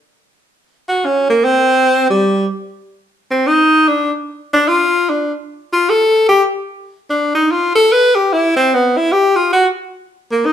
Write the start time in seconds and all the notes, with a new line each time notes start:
0.88 F#4
1.05 C#4
1.30 A#3
1.44 C4
2.10 G3
3.31 C4
3.47 D#4
3.88 D4
4.53 D4
4.68 F4
5.09 D4
5.73 F4
5.89 A4
6.29 G4
7.10 D4
7.35 D#4
7.51 F4
7.75 A4
7.92 B4
8.15 G4
8.32 E4
8.56 C4
8.74 B3
8.97 E4
9.12 G4
9.36 F4
9.52 F#4
10.32 A#3
10.46 D#4